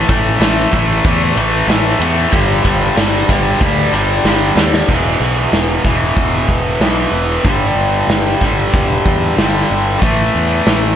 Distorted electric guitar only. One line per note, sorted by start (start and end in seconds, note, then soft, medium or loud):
0.09 0.39 A2 medium
0.09 0.39 E3 medium
0.09 0.41 A3 loud
0.40 0.71 A2 medium
0.40 0.72 E3 loud
0.40 0.72 A3 medium
0.72 1.03 A2 medium
0.72 1.04 E3 medium
0.72 1.04 A3 loud
1.05 1.35 A2 loud
1.05 1.36 E3 loud
1.05 1.36 A3 loud
1.36 1.67 A2 medium
1.36 1.68 E3 medium
1.36 1.68 A3 loud
1.68 1.99 A2 medium
1.68 1.99 E3 loud
1.68 2.00 A3 loud
2.00 2.31 A2 medium
2.00 2.31 E3 medium
2.00 2.31 A3 loud
2.31 2.62 G2 medium
2.31 2.63 D3 loud
2.31 2.64 G3 loud
2.64 2.95 G2 medium
2.64 2.96 D3 medium
2.64 2.96 G3 medium
2.96 3.27 G2 medium
2.96 3.29 D3 medium
2.96 3.29 G3 loud
3.29 3.60 G2 medium
3.29 3.60 D3 medium
3.29 3.61 G3 loud
3.61 3.92 G2 loud
3.61 3.93 D3 loud
3.61 3.94 G3 loud
3.93 4.25 G2 medium
3.93 4.25 D3 medium
3.93 4.26 G3 medium
4.26 4.56 G2 medium
4.26 4.57 D3 medium
4.26 4.57 G3 medium
4.57 4.87 G2 medium
4.57 4.88 D3 medium
4.57 4.88 G3 medium
4.89 5.83 E2 medium
4.89 5.84 B2 loud
4.89 5.84 E3 loud
5.85 6.79 E2 medium
5.85 6.80 B2 medium
5.85 6.79 E3 medium
6.81 7.43 E2 medium
6.81 7.44 B2 medium
6.81 7.45 E3 medium
7.44 8.39 G2 medium
7.44 8.41 D3 medium
7.49 8.41 G3 loud
8.42 9.36 G2 medium
8.42 9.37 D3 medium
8.42 9.36 G3 medium
9.37 10.00 G2 medium
9.37 9.99 D3 medium
9.41 10.02 G3 medium
9.99 10.95 A2 medium
9.99 10.96 E3 loud
10.04 10.96 A3 loud